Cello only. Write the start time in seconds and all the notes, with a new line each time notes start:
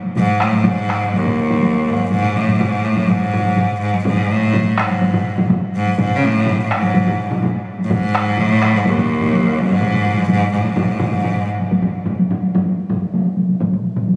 0.18 G#2
0.42 A2
0.67 G#2
1.16 D#2
1.88 G#2
2.11 G#2
2.36 A2
2.59 G#2
2.85 A2
3.09 G#2
3.81 G#2
4.06 G#2
4.31 A2
4.79 G#2
5.76 G#2
5.99 G#2
6.16 C#3
6.24 A2
6.64 A2
6.71 G#2
7.84 A2
7.92 G#2
8.41 A2
8.76 G#2
8.87 D#2
9.59 G#2
10.30 G#2
10.53 G#2
10.60 A2
10.68 G#2
10.76 A2
10.83 G#2
10.91 A2
10.98 G#2
11.06 A2
11.12 G#2